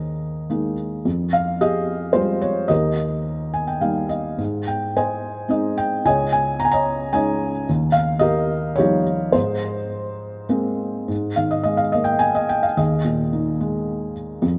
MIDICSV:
0, 0, Header, 1, 2, 480
1, 0, Start_track
1, 0, Key_signature, -4, "major"
1, 0, Tempo, 546946
1, 928, Time_signature, 3, 2, 24, 8
1, 2363, Tempo, 563910
1, 4763, Tempo, 544465
1, 7163, Tempo, 561798
1, 8603, Tempo, 586510
1, 10043, Tempo, 549954
1, 12578, End_track
2, 0, Start_track
2, 0, Title_t, "Felt piano"
2, 0, Program_c, 0, 0
2, 0, Control_c, 0, 64, 127
2, 0, Note_on_c, 0, 39, 41
2, 0, Note_on_c, 0, 68, 42
2, 0, Note_on_c, 0, 70, 45
2, 0, Note_on_c, 0, 75, 59
2, 436, Note_on_c, 0, 56, 38
2, 441, Note_on_c, 0, 58, 34
2, 444, Note_on_c, 0, 63, 40
2, 631, Note_off_c, 0, 75, 0
2, 651, Note_off_c, 0, 70, 0
2, 654, Note_off_c, 0, 68, 0
2, 888, Note_off_c, 0, 39, 0
2, 908, Note_off_c, 0, 56, 0
2, 911, Note_off_c, 0, 58, 0
2, 912, Note_off_c, 0, 63, 0
2, 924, Note_on_c, 0, 41, 48
2, 938, Control_c, 0, 64, 0
2, 1114, Control_c, 0, 64, 127
2, 1167, Note_on_c, 0, 77, 73
2, 1411, Note_off_c, 0, 77, 0
2, 1413, Note_on_c, 0, 67, 50
2, 1413, Note_on_c, 0, 75, 70
2, 1416, Note_on_c, 0, 68, 50
2, 1868, Note_on_c, 0, 72, 66
2, 1879, Note_on_c, 0, 55, 42
2, 1882, Note_on_c, 0, 56, 37
2, 1884, Note_on_c, 0, 65, 44
2, 1898, Note_off_c, 0, 75, 0
2, 2090, Note_off_c, 0, 67, 0
2, 2091, Note_off_c, 0, 68, 0
2, 2120, Note_on_c, 0, 73, 67
2, 2122, Note_off_c, 0, 72, 0
2, 2327, Note_off_c, 0, 41, 0
2, 2349, Note_off_c, 0, 55, 0
2, 2351, Note_off_c, 0, 56, 0
2, 2351, Note_off_c, 0, 65, 0
2, 2352, Note_on_c, 0, 75, 65
2, 2364, Note_on_c, 0, 39, 46
2, 2364, Note_on_c, 0, 70, 46
2, 2368, Note_on_c, 0, 67, 46
2, 2371, Note_off_c, 0, 73, 0
2, 2375, Control_c, 0, 64, 0
2, 2539, Control_c, 0, 64, 127
2, 3081, Note_on_c, 0, 80, 50
2, 3194, Note_off_c, 0, 80, 0
2, 3198, Note_on_c, 0, 79, 46
2, 3313, Note_off_c, 0, 79, 0
2, 3316, Note_on_c, 0, 55, 34
2, 3316, Note_on_c, 0, 58, 32
2, 3316, Note_on_c, 0, 77, 47
2, 3317, Note_on_c, 0, 63, 37
2, 3528, Note_off_c, 0, 75, 0
2, 3534, Note_off_c, 0, 70, 0
2, 3536, Note_off_c, 0, 67, 0
2, 3547, Note_off_c, 0, 77, 0
2, 3554, Note_on_c, 0, 75, 46
2, 3777, Note_off_c, 0, 39, 0
2, 3787, Note_off_c, 0, 75, 0
2, 3792, Note_off_c, 0, 55, 0
2, 3792, Note_off_c, 0, 58, 0
2, 3793, Note_off_c, 0, 63, 0
2, 3802, Note_on_c, 0, 44, 42
2, 3823, Control_c, 0, 64, 0
2, 3989, Control_c, 0, 64, 127
2, 4050, Note_on_c, 0, 79, 56
2, 4297, Note_off_c, 0, 79, 0
2, 4298, Note_on_c, 0, 72, 41
2, 4298, Note_on_c, 0, 80, 58
2, 4303, Note_on_c, 0, 75, 44
2, 4734, Note_off_c, 0, 80, 0
2, 4740, Note_on_c, 0, 56, 37
2, 4744, Note_off_c, 0, 75, 0
2, 4744, Note_on_c, 0, 60, 32
2, 4748, Note_on_c, 0, 63, 42
2, 4757, Note_on_c, 0, 75, 57
2, 4975, Note_off_c, 0, 72, 0
2, 4995, Note_on_c, 0, 79, 66
2, 5010, Note_off_c, 0, 75, 0
2, 5207, Note_off_c, 0, 44, 0
2, 5219, Note_off_c, 0, 56, 0
2, 5222, Note_off_c, 0, 60, 0
2, 5224, Note_off_c, 0, 63, 0
2, 5239, Note_on_c, 0, 37, 46
2, 5242, Note_on_c, 0, 80, 75
2, 5249, Note_off_c, 0, 79, 0
2, 5252, Note_on_c, 0, 75, 52
2, 5259, Control_c, 0, 64, 0
2, 5260, Note_on_c, 0, 73, 51
2, 5410, Control_c, 0, 64, 127
2, 5466, Note_off_c, 0, 80, 0
2, 5479, Note_on_c, 0, 80, 76
2, 5704, Note_off_c, 0, 80, 0
2, 5718, Note_on_c, 0, 82, 75
2, 5764, Note_on_c, 0, 80, 67
2, 5782, Note_off_c, 0, 82, 0
2, 5823, Note_off_c, 0, 73, 0
2, 5824, Note_on_c, 0, 82, 75
2, 5833, Note_off_c, 0, 75, 0
2, 5833, Note_off_c, 0, 80, 0
2, 5836, Note_on_c, 0, 73, 51
2, 5846, Note_on_c, 0, 75, 56
2, 6187, Note_on_c, 0, 80, 72
2, 6190, Note_off_c, 0, 73, 0
2, 6191, Note_on_c, 0, 56, 41
2, 6194, Note_off_c, 0, 75, 0
2, 6195, Note_on_c, 0, 61, 39
2, 6199, Note_on_c, 0, 63, 44
2, 6204, Note_off_c, 0, 82, 0
2, 6204, Note_on_c, 0, 73, 50
2, 6207, Note_on_c, 0, 75, 51
2, 6528, Note_off_c, 0, 80, 0
2, 6641, Note_off_c, 0, 37, 0
2, 6648, Note_off_c, 0, 73, 0
2, 6650, Note_off_c, 0, 75, 0
2, 6661, Note_off_c, 0, 56, 0
2, 6663, Note_off_c, 0, 61, 0
2, 6665, Note_off_c, 0, 63, 0
2, 6687, Note_on_c, 0, 39, 53
2, 6691, Control_c, 0, 64, 0
2, 6853, Control_c, 0, 64, 127
2, 6888, Note_on_c, 0, 77, 79
2, 7128, Note_on_c, 0, 75, 77
2, 7141, Note_on_c, 0, 67, 54
2, 7149, Note_on_c, 0, 70, 57
2, 7154, Note_off_c, 0, 77, 0
2, 7609, Note_on_c, 0, 73, 78
2, 7623, Note_off_c, 0, 67, 0
2, 7629, Note_on_c, 0, 65, 57
2, 7636, Note_on_c, 0, 67, 56
2, 7638, Note_off_c, 0, 75, 0
2, 7643, Note_on_c, 0, 53, 43
2, 7648, Note_on_c, 0, 55, 42
2, 7650, Note_on_c, 0, 63, 46
2, 7840, Note_off_c, 0, 70, 0
2, 8081, Note_off_c, 0, 65, 0
2, 8084, Note_off_c, 0, 67, 0
2, 8089, Note_off_c, 0, 39, 0
2, 8094, Note_on_c, 0, 72, 66
2, 8095, Note_off_c, 0, 63, 0
2, 8107, Note_off_c, 0, 53, 0
2, 8108, Note_on_c, 0, 63, 49
2, 8110, Note_off_c, 0, 55, 0
2, 8114, Note_on_c, 0, 44, 54
2, 8119, Note_off_c, 0, 73, 0
2, 8132, Control_c, 0, 64, 0
2, 8267, Control_c, 0, 64, 127
2, 9037, Note_off_c, 0, 72, 0
2, 9044, Note_off_c, 0, 63, 0
2, 9070, Note_on_c, 0, 56, 45
2, 9071, Note_on_c, 0, 58, 40
2, 9075, Note_on_c, 0, 60, 46
2, 9535, Note_off_c, 0, 44, 0
2, 9550, Note_off_c, 0, 56, 0
2, 9550, Note_off_c, 0, 58, 0
2, 9552, Note_off_c, 0, 60, 0
2, 9553, Note_on_c, 0, 44, 44
2, 9581, Control_c, 0, 64, 0
2, 9719, Control_c, 0, 64, 127
2, 9782, Note_on_c, 0, 77, 62
2, 9791, Note_on_c, 0, 51, 39
2, 9903, Note_on_c, 0, 75, 57
2, 9918, Note_off_c, 0, 77, 0
2, 9994, Note_off_c, 0, 75, 0
2, 10007, Note_on_c, 0, 75, 63
2, 10025, Note_on_c, 0, 56, 43
2, 10125, Note_on_c, 0, 77, 60
2, 10151, Note_off_c, 0, 75, 0
2, 10255, Note_on_c, 0, 75, 59
2, 10258, Note_off_c, 0, 77, 0
2, 10272, Note_on_c, 0, 58, 43
2, 10360, Note_on_c, 0, 79, 67
2, 10398, Note_off_c, 0, 75, 0
2, 10489, Note_on_c, 0, 80, 75
2, 10512, Note_off_c, 0, 79, 0
2, 10626, Note_on_c, 0, 75, 63
2, 10637, Note_off_c, 0, 80, 0
2, 10735, Note_off_c, 0, 51, 0
2, 10752, Note_on_c, 0, 79, 70
2, 10765, Note_off_c, 0, 75, 0
2, 10871, Note_on_c, 0, 77, 65
2, 10888, Note_off_c, 0, 79, 0
2, 10971, Note_off_c, 0, 44, 0
2, 10976, Note_off_c, 0, 56, 0
2, 10985, Note_off_c, 0, 58, 0
2, 10997, Note_on_c, 0, 75, 61
2, 10998, Note_on_c, 0, 39, 48
2, 11006, Note_on_c, 0, 68, 45
2, 11007, Note_off_c, 0, 77, 0
2, 11029, Control_c, 0, 64, 0
2, 11170, Control_c, 0, 64, 127
2, 11234, Note_on_c, 0, 46, 44
2, 11482, Note_on_c, 0, 51, 47
2, 11723, Note_on_c, 0, 56, 48
2, 12167, Note_off_c, 0, 75, 0
2, 12172, Note_off_c, 0, 46, 0
2, 12172, Note_off_c, 0, 68, 0
2, 12403, Note_off_c, 0, 39, 0
2, 12412, Note_off_c, 0, 51, 0
2, 12419, Note_off_c, 0, 56, 0
2, 12436, Note_on_c, 0, 41, 55
2, 12459, Control_c, 0, 64, 0
2, 12578, Note_off_c, 0, 41, 0
2, 12578, End_track
0, 0, End_of_file